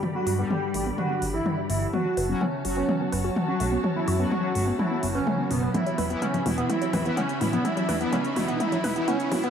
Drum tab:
HH |--o---o---o---o-|--o---o---o---o-|--o---o---o---o-|xxoxxxoxxxoxxxox|
T2 |o---o---o---o---|o---o---o---o---|o---o---o---o---|o-o-o-o-o-o-o-o-|
CG |----------------|----------------|----------------|O----O----O----O|

HH |xxoxxxoxxxoxxxox|
T2 |o-o-o-o-o-o-o-o-|
CG |----O----O----O-|